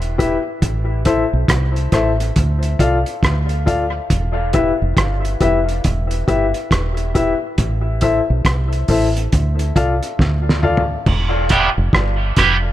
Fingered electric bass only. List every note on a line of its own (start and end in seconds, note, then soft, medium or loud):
0.00 0.36 E1 medium
0.63 1.23 A1 medium
1.33 1.47 B1 medium
1.49 1.87 C2 medium
1.93 2.30 A1 medium
2.37 2.74 D2 medium
2.80 3.03 C2 medium
3.23 3.99 D2 medium
4.11 4.72 E1 medium
4.82 4.96 F1 medium
4.97 5.35 G1 medium
5.41 5.79 F1 medium
5.85 6.22 E1 loud
6.28 6.52 G1 medium
6.71 7.32 E1 medium
7.59 8.20 A1 medium
8.30 8.44 B1 medium
8.45 8.83 C2 medium
8.89 9.27 A1 medium
9.33 9.71 D2 medium
9.76 10.00 C2 medium
10.20 10.95 D2 medium
11.07 11.68 E1 loud
11.78 11.92 F1 medium
11.93 12.31 G1 medium
12.37 12.73 F1 medium